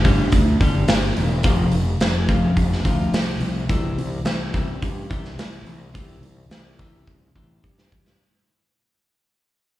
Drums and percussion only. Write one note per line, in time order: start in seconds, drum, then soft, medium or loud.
0.05 kick medium
0.05 open hi-hat soft
0.32 kick medium
0.32 open hi-hat medium
0.61 kick medium
0.61 open hi-hat soft
0.88 snare loud
0.88 open hi-hat medium
1.17 open hi-hat medium
1.43 kick loud
1.43 open hi-hat medium
1.71 open hi-hat soft
2.01 snare loud
2.01 open hi-hat medium
2.29 kick medium
2.29 open hi-hat soft
2.57 kick medium
2.57 open hi-hat medium
2.73 snare soft
2.85 kick medium
2.85 open hi-hat medium
3.14 snare loud
3.14 open hi-hat medium
3.40 open hi-hat soft
3.69 kick loud
3.69 open hi-hat medium
3.98 open hi-hat soft
4.25 snare loud
4.25 open hi-hat medium
4.54 kick medium
4.54 open hi-hat soft
4.82 kick medium
4.82 open hi-hat medium
5.11 kick medium
5.11 open hi-hat soft
5.25 snare soft
5.39 snare loud
5.39 open hi-hat medium
5.66 open hi-hat soft
5.95 kick loud
5.95 open hi-hat medium
6.23 open hi-hat soft
6.51 snare loud
6.51 open hi-hat medium
6.79 kick medium
6.79 open hi-hat soft
7.07 kick medium
7.36 kick medium
7.64 kick medium
7.78 snare medium
7.92 kick medium
8.07 snare medium